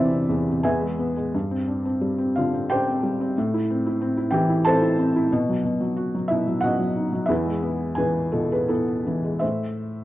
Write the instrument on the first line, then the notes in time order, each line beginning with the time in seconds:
felt piano
Already playing: E2 C3 E3 C4 D4 E4 A4 C5 D5 E5
0.11 C3
0.29 E2
0.48 C3
0.63 E2 G#4 B4 E5 G#5
0.81 G#3
0.99 B3
1.17 G#3
1.34 G2
1.51 C4
1.68 D4
1.85 C4
2.01 G3
2.18 C4
2.36 D3 F4 F5
2.54 C4
2.70 D4 G4 C5 G5
2.87 C4
3.03 G3
3.21 C4
3.38 A2
3.54 E4
3.70 C4
3.86 E4
4.01 C4
4.17 E4
4.31 E3 G4 G5
4.49 E4
4.65 C4 A4 C5 A5
4.82 E4
4.99 C4
5.16 E4
5.32 B2
5.49 F#3
5.65 B2
5.81 F#3
5.96 F#4
6.15 F#3
6.28 B2 E4 E5
6.48 F#3
6.61 B2 F#4 D#5 F#5
6.79 F#3
6.96 D#4
7.13 F#3
7.26 E2 G#4 B4 E5
7.30 E4
7.46 G#3
7.63 B3
7.95 E3 G#4 B4 G#5
8.32 B2 F4 A4
8.52 G#4 B4
8.68 B3 E4 A4
9.07 E3
9.25 G#3
9.39 A2 C5 E5